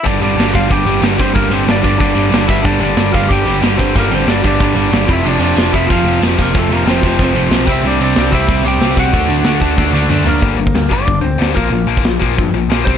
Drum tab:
CC |----------------|----------------|----------------|----------------|
HH |o---o---o---o---|o---o---o---o---|o---o---o---o---|o---o---o---o---|
SD |----o-------o---|----o-------o---|----o-------o---|----o-------o---|
T1 |----------------|----------------|----------------|----------------|
T2 |----------------|----------------|----------------|----------------|
FT |----------------|----------------|----------------|----------------|
BD |o-----o-o-----o-|o-----o-o-----o-|o-----o-o-----o-|o-----o-o-----o-|

CC |x---------------|----------------|----------------|----------------|
HH |----o---o---o---|o---o---o---o---|o---o---o---o---|o---o-----------|
SD |----o-------o---|----o-------o---|----o-------o---|----o---o-------|
T1 |----------------|----------------|----------------|----------o-----|
T2 |----------------|----------------|----------------|------------o---|
FT |----------------|----------------|----------------|--------------o-|
BD |------o-o-----o-|o-----o-o-----o-|------o-o-----o-|o-----o-o-------|

CC |----------------|----------------|
HH |o---o---o---o---|o---o---o---o---|
SD |----o-------o---|----o-------o---|
T1 |----------------|----------------|
T2 |----------------|----------------|
FT |----------------|----------------|
BD |o--o--o-o-----o-|---o--o-o-----o-|